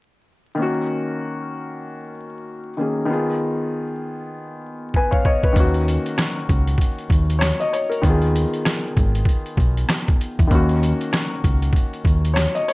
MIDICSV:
0, 0, Header, 1, 4, 480
1, 0, Start_track
1, 0, Key_signature, -6, "minor"
1, 0, Tempo, 618557
1, 474, Time_signature, 4, 2, 24, 8
1, 9878, End_track
2, 0, Start_track
2, 0, Title_t, "Grand piano"
2, 0, Program_c, 0, 0
2, 425, Note_on_c, 0, 51, 77
2, 445, Note_on_c, 0, 58, 67
2, 463, Note_on_c, 0, 61, 65
2, 483, Note_on_c, 0, 66, 82
2, 613, Control_c, 0, 64, 127
2, 2099, Note_off_c, 0, 51, 0
2, 2109, Note_off_c, 0, 58, 0
2, 2118, Note_off_c, 0, 61, 0
2, 2127, Note_off_c, 0, 66, 0
2, 2151, Note_on_c, 0, 51, 57
2, 2160, Note_on_c, 0, 58, 54
2, 2170, Note_on_c, 0, 61, 54
2, 2180, Note_on_c, 0, 68, 63
2, 2358, Note_off_c, 0, 51, 0
2, 2370, Note_on_c, 0, 51, 80
2, 2389, Note_on_c, 0, 59, 69
2, 2397, Note_off_c, 0, 58, 0
2, 2402, Note_off_c, 0, 61, 0
2, 2403, Control_c, 0, 64, 0
2, 2407, Note_off_c, 0, 68, 0
2, 2407, Note_on_c, 0, 65, 66
2, 2427, Note_on_c, 0, 68, 75
2, 2535, Control_c, 0, 64, 127
2, 3851, Note_on_c, 0, 71, 62
2, 3851, Note_on_c, 0, 80, 72
2, 3965, Note_on_c, 0, 73, 65
2, 3965, Note_on_c, 0, 77, 68
2, 3975, Note_off_c, 0, 80, 0
2, 3978, Note_off_c, 0, 71, 0
2, 4061, Note_off_c, 0, 77, 0
2, 4063, Note_off_c, 0, 73, 0
2, 4076, Note_on_c, 0, 73, 73
2, 4076, Note_on_c, 0, 75, 67
2, 4210, Note_off_c, 0, 75, 0
2, 4220, Note_on_c, 0, 71, 65
2, 4271, Note_off_c, 0, 51, 0
2, 4280, Note_off_c, 0, 59, 0
2, 4288, Note_on_c, 0, 51, 71
2, 4290, Note_off_c, 0, 65, 0
2, 4298, Note_off_c, 0, 73, 0
2, 4299, Note_off_c, 0, 68, 0
2, 4308, Note_on_c, 0, 58, 64
2, 4324, Control_c, 0, 64, 0
2, 4327, Note_on_c, 0, 61, 63
2, 4346, Note_on_c, 0, 66, 81
2, 4446, Note_off_c, 0, 71, 0
2, 4481, Control_c, 0, 64, 127
2, 5733, Note_on_c, 0, 73, 70
2, 5878, Note_off_c, 0, 73, 0
2, 5897, Note_on_c, 0, 75, 72
2, 5990, Note_off_c, 0, 75, 0
2, 5999, Note_on_c, 0, 73, 70
2, 6127, Note_on_c, 0, 70, 61
2, 6132, Note_off_c, 0, 73, 0
2, 6190, Note_off_c, 0, 51, 0
2, 6200, Note_off_c, 0, 58, 0
2, 6209, Note_off_c, 0, 61, 0
2, 6219, Note_off_c, 0, 66, 0
2, 6221, Note_on_c, 0, 51, 83
2, 6240, Note_on_c, 0, 59, 64
2, 6245, Control_c, 0, 64, 0
2, 6259, Note_on_c, 0, 65, 66
2, 6278, Note_on_c, 0, 68, 81
2, 6359, Note_off_c, 0, 70, 0
2, 6370, Control_c, 0, 64, 127
2, 8116, Note_off_c, 0, 51, 0
2, 8126, Note_off_c, 0, 59, 0
2, 8127, Note_on_c, 0, 51, 72
2, 8136, Note_off_c, 0, 65, 0
2, 8145, Note_off_c, 0, 68, 0
2, 8147, Note_on_c, 0, 58, 70
2, 8164, Control_c, 0, 64, 0
2, 8166, Note_on_c, 0, 61, 65
2, 8185, Note_on_c, 0, 66, 82
2, 8314, Control_c, 0, 64, 127
2, 9573, Note_on_c, 0, 73, 68
2, 9718, Note_off_c, 0, 73, 0
2, 9737, Note_on_c, 0, 75, 70
2, 9830, Note_off_c, 0, 75, 0
2, 9842, Note_on_c, 0, 73, 72
2, 9878, Note_off_c, 0, 51, 0
2, 9878, Note_off_c, 0, 58, 0
2, 9878, Note_off_c, 0, 61, 0
2, 9878, Note_off_c, 0, 66, 0
2, 9878, Note_off_c, 0, 73, 0
2, 9878, End_track
3, 0, Start_track
3, 0, Title_t, "Fingered electric bass"
3, 0, Program_c, 1, 33
3, 4316, Note_on_c, 1, 39, 102
3, 4632, Note_off_c, 1, 39, 0
3, 5039, Note_on_c, 1, 37, 83
3, 5236, Note_off_c, 1, 37, 0
3, 5509, Note_on_c, 1, 39, 78
3, 5828, Note_off_c, 1, 39, 0
3, 6236, Note_on_c, 1, 39, 100
3, 6552, Note_off_c, 1, 39, 0
3, 6960, Note_on_c, 1, 32, 91
3, 7156, Note_off_c, 1, 32, 0
3, 7431, Note_on_c, 1, 35, 89
3, 7631, Note_off_c, 1, 35, 0
3, 8064, Note_on_c, 1, 40, 92
3, 8142, Note_off_c, 1, 40, 0
3, 8157, Note_on_c, 1, 39, 109
3, 8473, Note_off_c, 1, 39, 0
3, 8879, Note_on_c, 1, 37, 83
3, 9076, Note_off_c, 1, 37, 0
3, 9350, Note_on_c, 1, 39, 81
3, 9668, Note_off_c, 1, 39, 0
3, 9878, End_track
4, 0, Start_track
4, 0, Title_t, "Drums"
4, 3834, Note_on_c, 9, 36, 58
4, 3911, Note_off_c, 9, 36, 0
4, 3976, Note_on_c, 9, 36, 64
4, 4054, Note_off_c, 9, 36, 0
4, 4074, Note_on_c, 9, 36, 89
4, 4152, Note_off_c, 9, 36, 0
4, 4216, Note_on_c, 9, 36, 89
4, 4294, Note_off_c, 9, 36, 0
4, 4315, Note_on_c, 9, 36, 118
4, 4321, Note_on_c, 9, 42, 99
4, 4392, Note_off_c, 9, 36, 0
4, 4398, Note_off_c, 9, 42, 0
4, 4457, Note_on_c, 9, 42, 37
4, 4534, Note_off_c, 9, 42, 0
4, 4564, Note_on_c, 9, 42, 88
4, 4642, Note_off_c, 9, 42, 0
4, 4703, Note_on_c, 9, 42, 49
4, 4780, Note_off_c, 9, 42, 0
4, 4794, Note_on_c, 9, 37, 87
4, 4796, Note_on_c, 9, 42, 92
4, 4801, Note_on_c, 9, 38, 108
4, 4872, Note_off_c, 9, 37, 0
4, 4874, Note_off_c, 9, 42, 0
4, 4879, Note_off_c, 9, 38, 0
4, 5037, Note_on_c, 9, 36, 96
4, 5039, Note_on_c, 9, 42, 74
4, 5115, Note_off_c, 9, 36, 0
4, 5117, Note_off_c, 9, 42, 0
4, 5179, Note_on_c, 9, 42, 55
4, 5257, Note_off_c, 9, 42, 0
4, 5260, Note_on_c, 9, 36, 86
4, 5286, Note_on_c, 9, 42, 78
4, 5338, Note_off_c, 9, 36, 0
4, 5364, Note_off_c, 9, 42, 0
4, 5420, Note_on_c, 9, 42, 34
4, 5497, Note_off_c, 9, 42, 0
4, 5508, Note_on_c, 9, 36, 90
4, 5527, Note_on_c, 9, 42, 65
4, 5586, Note_off_c, 9, 36, 0
4, 5605, Note_off_c, 9, 42, 0
4, 5664, Note_on_c, 9, 42, 55
4, 5741, Note_off_c, 9, 42, 0
4, 5752, Note_on_c, 9, 37, 88
4, 5759, Note_on_c, 9, 38, 105
4, 5764, Note_on_c, 9, 42, 98
4, 5830, Note_off_c, 9, 37, 0
4, 5836, Note_off_c, 9, 38, 0
4, 5842, Note_off_c, 9, 42, 0
4, 5900, Note_on_c, 9, 42, 36
4, 5977, Note_off_c, 9, 42, 0
4, 6003, Note_on_c, 9, 42, 74
4, 6081, Note_off_c, 9, 42, 0
4, 6143, Note_on_c, 9, 42, 57
4, 6221, Note_off_c, 9, 42, 0
4, 6235, Note_on_c, 9, 36, 117
4, 6241, Note_on_c, 9, 42, 98
4, 6313, Note_off_c, 9, 36, 0
4, 6318, Note_off_c, 9, 42, 0
4, 6377, Note_on_c, 9, 42, 36
4, 6454, Note_off_c, 9, 42, 0
4, 6484, Note_on_c, 9, 42, 86
4, 6562, Note_off_c, 9, 42, 0
4, 6623, Note_on_c, 9, 42, 48
4, 6701, Note_off_c, 9, 42, 0
4, 6715, Note_on_c, 9, 37, 87
4, 6717, Note_on_c, 9, 42, 94
4, 6722, Note_on_c, 9, 38, 108
4, 6793, Note_off_c, 9, 37, 0
4, 6794, Note_off_c, 9, 42, 0
4, 6799, Note_off_c, 9, 38, 0
4, 6958, Note_on_c, 9, 36, 100
4, 6960, Note_on_c, 9, 42, 75
4, 7035, Note_off_c, 9, 36, 0
4, 7037, Note_off_c, 9, 42, 0
4, 7100, Note_on_c, 9, 42, 55
4, 7178, Note_off_c, 9, 42, 0
4, 7181, Note_on_c, 9, 36, 92
4, 7207, Note_on_c, 9, 42, 78
4, 7258, Note_off_c, 9, 36, 0
4, 7285, Note_off_c, 9, 42, 0
4, 7341, Note_on_c, 9, 42, 35
4, 7418, Note_off_c, 9, 42, 0
4, 7429, Note_on_c, 9, 36, 89
4, 7448, Note_on_c, 9, 42, 61
4, 7506, Note_off_c, 9, 36, 0
4, 7526, Note_off_c, 9, 42, 0
4, 7584, Note_on_c, 9, 42, 56
4, 7662, Note_off_c, 9, 42, 0
4, 7672, Note_on_c, 9, 37, 88
4, 7679, Note_on_c, 9, 38, 114
4, 7685, Note_on_c, 9, 42, 98
4, 7750, Note_off_c, 9, 37, 0
4, 7757, Note_off_c, 9, 38, 0
4, 7762, Note_off_c, 9, 42, 0
4, 7820, Note_on_c, 9, 42, 37
4, 7824, Note_on_c, 9, 36, 100
4, 7897, Note_off_c, 9, 42, 0
4, 7902, Note_off_c, 9, 36, 0
4, 7923, Note_on_c, 9, 42, 74
4, 8000, Note_off_c, 9, 42, 0
4, 8062, Note_on_c, 9, 36, 96
4, 8063, Note_on_c, 9, 42, 57
4, 8140, Note_off_c, 9, 36, 0
4, 8141, Note_off_c, 9, 42, 0
4, 8155, Note_on_c, 9, 36, 116
4, 8161, Note_on_c, 9, 42, 99
4, 8233, Note_off_c, 9, 36, 0
4, 8238, Note_off_c, 9, 42, 0
4, 8297, Note_on_c, 9, 42, 37
4, 8374, Note_off_c, 9, 42, 0
4, 8404, Note_on_c, 9, 42, 88
4, 8482, Note_off_c, 9, 42, 0
4, 8543, Note_on_c, 9, 42, 49
4, 8621, Note_off_c, 9, 42, 0
4, 8635, Note_on_c, 9, 37, 88
4, 8637, Note_on_c, 9, 42, 91
4, 8642, Note_on_c, 9, 38, 108
4, 8713, Note_off_c, 9, 37, 0
4, 8715, Note_off_c, 9, 42, 0
4, 8720, Note_off_c, 9, 38, 0
4, 8878, Note_on_c, 9, 36, 97
4, 8880, Note_on_c, 9, 42, 76
4, 8955, Note_off_c, 9, 36, 0
4, 8958, Note_off_c, 9, 42, 0
4, 9020, Note_on_c, 9, 42, 54
4, 9098, Note_off_c, 9, 42, 0
4, 9100, Note_on_c, 9, 36, 90
4, 9127, Note_on_c, 9, 42, 80
4, 9178, Note_off_c, 9, 36, 0
4, 9205, Note_off_c, 9, 42, 0
4, 9260, Note_on_c, 9, 42, 36
4, 9337, Note_off_c, 9, 42, 0
4, 9348, Note_on_c, 9, 36, 87
4, 9367, Note_on_c, 9, 42, 64
4, 9426, Note_off_c, 9, 36, 0
4, 9445, Note_off_c, 9, 42, 0
4, 9504, Note_on_c, 9, 42, 57
4, 9581, Note_off_c, 9, 42, 0
4, 9592, Note_on_c, 9, 37, 87
4, 9599, Note_on_c, 9, 38, 112
4, 9605, Note_on_c, 9, 42, 98
4, 9670, Note_off_c, 9, 37, 0
4, 9676, Note_off_c, 9, 38, 0
4, 9682, Note_off_c, 9, 42, 0
4, 9740, Note_on_c, 9, 42, 37
4, 9817, Note_off_c, 9, 42, 0
4, 9843, Note_on_c, 9, 42, 74
4, 9878, Note_off_c, 9, 42, 0
4, 9878, End_track
0, 0, End_of_file